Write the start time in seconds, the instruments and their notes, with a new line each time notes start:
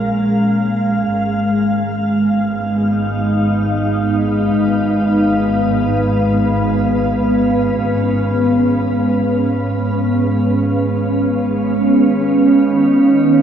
Already playing: double bass section A#1, ambient pad G#3 A#3 C#4 A#4 F5
1.11 double bass section G#1
1.71 ambient pad B3
2.03 ambient pad D#4
3.60 ambient pad B4
6.77 ambient pad C#4
11.85 ambient pad D#3